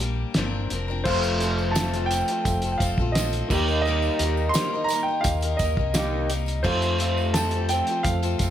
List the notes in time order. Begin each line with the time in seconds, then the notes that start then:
Already playing: A#1 C5
0.00 G3 A#3 D4 G4
0.34 G1 A#2 D3 F3 C4 D4, snare, closed hi-hat
0.39 A#4
0.70 F1 F3 C4 D4 A#4, closed hi-hat
0.88 F3 C4 D4 A#4
1.04 F1 F3 A3 C4 F4 A4 C5 F5, kick, crash, tambourine
1.08 A4
1.23 closed hi-hat, tambourine
1.38 F3 C4 A4 C5 F5, closed hi-hat, tambourine
1.43 F4 A4
1.58 tambourine
1.71 F3 A4 C5 A5
1.75 C4 F4 A4 F5, snare, closed hi-hat, tambourine
1.94 C4 F4 A4, closed hi-hat
2.06 G5
2.11 F3 C4 F4 A4, closed hi-hat, tambourine
2.28 F4 A4, closed hi-hat
2.32 C4
2.45 F1 A4 C5 F5, kick, closed hi-hat, tambourine
2.62 F4 A4, closed hi-hat, tambourine
2.67 C4
2.72 G5
2.78 F1 F3 C4 F5, kick, closed hi-hat
2.82 F4 A4, tambourine
2.98 A#1 F4 A4, kick
3.02 C4
3.12 A4 C5 D#5 F5, snare, closed hi-hat
3.18 F3 C4 F4 A4, tambourine
3.33 closed hi-hat
3.48 D#2 D#3 G3 G4 A#4 D#5, kick, tambourine, crash
3.53 A#3 D#4 G4 A#4
3.68 A#3 D#4 A#4, tambourine
3.82 D#5, tambourine
3.87 D#3 G3 A#3 D#4 A#4
4.02 tambourine
4.19 D#2 G3 A#3 D#4 G4 A#4 D#5, closed hi-hat, tambourine
4.37 tambourine
4.49 C6
4.54 D#3 G3 A#3 D#4 G4 A#4 C5, snare, closed hi-hat, tambourine
4.74 A#3 D#4 A#4
4.84 A#5
4.89 G3, closed hi-hat, tambourine
4.93 A#3 D#4 A#4
5.03 G5
5.08 A#3 D#4 A#4
5.21 G4 A#4 D#5 F5, kick, closed hi-hat, tambourine
5.25 D#2
5.41 A#4, closed hi-hat, tambourine
5.45 A#3 D#4
5.57 D#2 D#5, kick, closed hi-hat, tambourine
5.62 G3 A#3 D#4 A#4
5.77 C2 A#3 D#4 A#4, kick
5.93 D#3 G3 A#3 D#4 G4 A#4 F5, snare, closed hi-hat, tambourine
5.97 G4
6.30 G3 A#3 D#4 A#4, closed hi-hat, tambourine
6.46 closed hi-hat, tambourine
6.63 F2 C3 F3 A3 C4 F4 A4 C5 F5, kick, tambourine, crash
6.82 closed hi-hat, tambourine
6.98 F3 C4 F4 A4 C5 F5, closed hi-hat, tambourine
7.17 tambourine
7.34 F3 C4 F4 A4 C5 G5 A5, snare, closed hi-hat, tambourine
7.51 F4 A4, closed hi-hat
7.57 C4
7.69 F3 G5, closed hi-hat, tambourine
7.73 C4 F4 A4
7.87 F4 A4, closed hi-hat
7.91 C4
8.03 F2 A4 C5 F5, kick, closed hi-hat, tambourine
8.22 C4 F4 A4, closed hi-hat, tambourine
8.39 F2 F3 C4 F4, kick, closed hi-hat, tambourine
8.43 A4